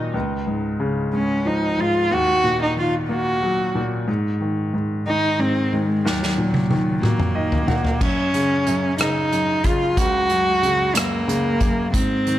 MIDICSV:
0, 0, Header, 1, 4, 480
1, 0, Start_track
1, 0, Tempo, 655022
1, 110, Time_signature, 6, 3, 24, 8
1, 9079, End_track
2, 0, Start_track
2, 0, Title_t, "Cello"
2, 0, Program_c, 0, 42
2, 834, Note_on_c, 0, 61, 62
2, 1077, Note_on_c, 0, 63, 69
2, 1088, Note_off_c, 0, 61, 0
2, 1317, Note_on_c, 0, 65, 86
2, 1328, Note_off_c, 0, 63, 0
2, 1562, Note_on_c, 0, 66, 102
2, 1573, Note_off_c, 0, 65, 0
2, 1917, Note_off_c, 0, 66, 0
2, 1922, Note_on_c, 0, 63, 73
2, 2029, Note_off_c, 0, 63, 0
2, 2046, Note_on_c, 0, 65, 80
2, 2151, Note_off_c, 0, 65, 0
2, 2279, Note_on_c, 0, 66, 68
2, 2786, Note_off_c, 0, 66, 0
2, 3720, Note_on_c, 0, 63, 89
2, 3954, Note_on_c, 0, 60, 82
2, 3965, Note_off_c, 0, 63, 0
2, 4197, Note_on_c, 0, 56, 73
2, 4208, Note_off_c, 0, 60, 0
2, 4440, Note_on_c, 0, 54, 79
2, 4451, Note_off_c, 0, 56, 0
2, 5144, Note_off_c, 0, 54, 0
2, 5149, Note_on_c, 0, 58, 74
2, 5870, Note_on_c, 0, 61, 93
2, 5881, Note_off_c, 0, 58, 0
2, 6589, Note_off_c, 0, 61, 0
2, 6593, Note_on_c, 0, 63, 76
2, 7072, Note_on_c, 0, 65, 84
2, 7083, Note_off_c, 0, 63, 0
2, 7309, Note_on_c, 0, 66, 96
2, 7320, Note_off_c, 0, 65, 0
2, 8028, Note_on_c, 0, 58, 85
2, 8039, Note_off_c, 0, 66, 0
2, 8742, Note_off_c, 0, 58, 0
2, 8746, Note_on_c, 0, 60, 95
2, 9079, Note_off_c, 0, 60, 0
2, 9079, End_track
3, 0, Start_track
3, 0, Title_t, "Grand piano"
3, 0, Program_c, 1, 0
3, 0, Control_c, 1, 64, 127
3, 0, Note_on_c, 1, 39, 59
3, 0, Note_on_c, 1, 46, 44
3, 0, Note_on_c, 1, 51, 48
3, 0, Note_on_c, 1, 54, 43
3, 79, Note_off_c, 1, 39, 0
3, 88, Note_off_c, 1, 54, 0
3, 93, Note_off_c, 1, 51, 0
3, 98, Note_off_c, 1, 46, 0
3, 101, Note_on_c, 1, 37, 53
3, 119, Control_c, 1, 64, 0
3, 250, Control_c, 1, 64, 127
3, 346, Note_on_c, 1, 44, 40
3, 584, Note_on_c, 1, 49, 55
3, 830, Note_on_c, 1, 56, 46
3, 1065, Note_on_c, 1, 53, 47
3, 1280, Note_off_c, 1, 44, 0
3, 1307, Note_on_c, 1, 44, 47
3, 1518, Note_off_c, 1, 37, 0
3, 1520, Note_off_c, 1, 49, 0
3, 1530, Note_off_c, 1, 56, 0
3, 1534, Note_off_c, 1, 53, 0
3, 1542, Note_off_c, 1, 44, 0
3, 1545, Note_on_c, 1, 39, 61
3, 1561, Control_c, 1, 64, 0
3, 1690, Control_c, 1, 64, 127
3, 1787, Note_on_c, 1, 46, 43
3, 2027, Note_on_c, 1, 51, 52
3, 2266, Note_on_c, 1, 58, 49
3, 2508, Note_on_c, 1, 54, 48
3, 2721, Note_off_c, 1, 46, 0
3, 2749, Note_on_c, 1, 46, 52
3, 2960, Note_off_c, 1, 39, 0
3, 2961, Note_off_c, 1, 51, 0
3, 2967, Note_off_c, 1, 58, 0
3, 2976, Note_off_c, 1, 54, 0
3, 2984, Note_off_c, 1, 46, 0
3, 2988, Note_on_c, 1, 44, 57
3, 3002, Control_c, 1, 64, 0
3, 3117, Control_c, 1, 64, 127
3, 3230, Note_on_c, 1, 51, 42
3, 3461, Note_off_c, 1, 44, 0
3, 3472, Note_on_c, 1, 44, 54
3, 3705, Note_off_c, 1, 51, 0
3, 3716, Note_on_c, 1, 51, 49
3, 3939, Note_off_c, 1, 44, 0
3, 3950, Note_on_c, 1, 44, 50
3, 4188, Note_off_c, 1, 51, 0
3, 4199, Note_on_c, 1, 51, 49
3, 4417, Note_off_c, 1, 44, 0
3, 4429, Note_off_c, 1, 51, 0
3, 4434, Note_on_c, 1, 39, 61
3, 4442, Control_c, 1, 64, 0
3, 4579, Control_c, 1, 64, 127
3, 4675, Note_on_c, 1, 46, 43
3, 4913, Note_on_c, 1, 51, 51
3, 5150, Note_on_c, 1, 54, 45
3, 5374, Note_off_c, 1, 51, 0
3, 5385, Note_on_c, 1, 51, 53
3, 5386, Note_on_c, 1, 75, 59
3, 5604, Note_off_c, 1, 46, 0
3, 5612, Note_off_c, 1, 75, 0
3, 5627, Note_on_c, 1, 78, 58
3, 5628, Note_on_c, 1, 46, 46
3, 5843, Note_off_c, 1, 39, 0
3, 5849, Note_off_c, 1, 54, 0
3, 5852, Note_off_c, 1, 78, 0
3, 5854, Note_off_c, 1, 51, 0
3, 5863, Note_off_c, 1, 46, 0
3, 5867, Note_on_c, 1, 42, 60
3, 5880, Control_c, 1, 64, 0
3, 6008, Control_c, 1, 64, 127
3, 6112, Note_on_c, 1, 49, 43
3, 6342, Note_off_c, 1, 42, 0
3, 6353, Note_on_c, 1, 42, 55
3, 6579, Note_off_c, 1, 49, 0
3, 6590, Note_on_c, 1, 49, 46
3, 6820, Note_off_c, 1, 42, 0
3, 6831, Note_on_c, 1, 42, 51
3, 7057, Note_off_c, 1, 49, 0
3, 7068, Note_on_c, 1, 49, 58
3, 7306, Note_on_c, 1, 37, 62
3, 7537, Note_off_c, 1, 42, 0
3, 7548, Note_on_c, 1, 42, 45
3, 7775, Note_off_c, 1, 49, 0
3, 7786, Note_on_c, 1, 49, 50
3, 8011, Note_off_c, 1, 42, 0
3, 8022, Note_on_c, 1, 42, 46
3, 8251, Note_off_c, 1, 49, 0
3, 8262, Note_on_c, 1, 49, 52
3, 8496, Note_off_c, 1, 42, 0
3, 8507, Note_on_c, 1, 42, 54
3, 8716, Note_off_c, 1, 37, 0
3, 8730, Note_off_c, 1, 49, 0
3, 8740, Note_off_c, 1, 42, 0
3, 8746, Note_on_c, 1, 44, 57
3, 8758, Control_c, 1, 64, 0
3, 8882, Control_c, 1, 64, 127
3, 8988, Note_on_c, 1, 51, 48
3, 9079, Note_off_c, 1, 44, 0
3, 9079, Note_off_c, 1, 51, 0
3, 9079, End_track
4, 0, Start_track
4, 0, Title_t, "Drums"
4, 4444, Note_on_c, 9, 38, 46
4, 4517, Note_off_c, 9, 38, 0
4, 4565, Note_on_c, 9, 38, 42
4, 4638, Note_off_c, 9, 38, 0
4, 4793, Note_on_c, 9, 48, 56
4, 4866, Note_off_c, 9, 48, 0
4, 4914, Note_on_c, 9, 48, 57
4, 4987, Note_off_c, 9, 48, 0
4, 5154, Note_on_c, 9, 47, 64
4, 5227, Note_off_c, 9, 47, 0
4, 5273, Note_on_c, 9, 45, 64
4, 5346, Note_off_c, 9, 45, 0
4, 5511, Note_on_c, 9, 43, 72
4, 5585, Note_off_c, 9, 43, 0
4, 5629, Note_on_c, 9, 43, 81
4, 5702, Note_off_c, 9, 43, 0
4, 5750, Note_on_c, 9, 43, 70
4, 5823, Note_off_c, 9, 43, 0
4, 5870, Note_on_c, 9, 36, 95
4, 5871, Note_on_c, 9, 49, 69
4, 5944, Note_off_c, 9, 36, 0
4, 5945, Note_off_c, 9, 49, 0
4, 6111, Note_on_c, 9, 42, 46
4, 6184, Note_off_c, 9, 42, 0
4, 6350, Note_on_c, 9, 42, 44
4, 6424, Note_off_c, 9, 42, 0
4, 6583, Note_on_c, 9, 42, 81
4, 6601, Note_on_c, 9, 37, 88
4, 6656, Note_off_c, 9, 42, 0
4, 6674, Note_off_c, 9, 37, 0
4, 6833, Note_on_c, 9, 42, 50
4, 6906, Note_off_c, 9, 42, 0
4, 7064, Note_on_c, 9, 42, 51
4, 7068, Note_on_c, 9, 36, 85
4, 7137, Note_off_c, 9, 42, 0
4, 7141, Note_off_c, 9, 36, 0
4, 7308, Note_on_c, 9, 36, 96
4, 7308, Note_on_c, 9, 42, 70
4, 7381, Note_off_c, 9, 36, 0
4, 7382, Note_off_c, 9, 42, 0
4, 7544, Note_on_c, 9, 42, 45
4, 7618, Note_off_c, 9, 42, 0
4, 7791, Note_on_c, 9, 42, 45
4, 7864, Note_off_c, 9, 42, 0
4, 8023, Note_on_c, 9, 42, 89
4, 8041, Note_on_c, 9, 37, 94
4, 8097, Note_off_c, 9, 42, 0
4, 8115, Note_off_c, 9, 37, 0
4, 8274, Note_on_c, 9, 42, 55
4, 8347, Note_off_c, 9, 42, 0
4, 8504, Note_on_c, 9, 42, 53
4, 8508, Note_on_c, 9, 36, 85
4, 8577, Note_off_c, 9, 42, 0
4, 8581, Note_off_c, 9, 36, 0
4, 8748, Note_on_c, 9, 36, 95
4, 8749, Note_on_c, 9, 42, 77
4, 8822, Note_off_c, 9, 36, 0
4, 8822, Note_off_c, 9, 42, 0
4, 8989, Note_on_c, 9, 42, 49
4, 9062, Note_off_c, 9, 42, 0
4, 9079, End_track
0, 0, End_of_file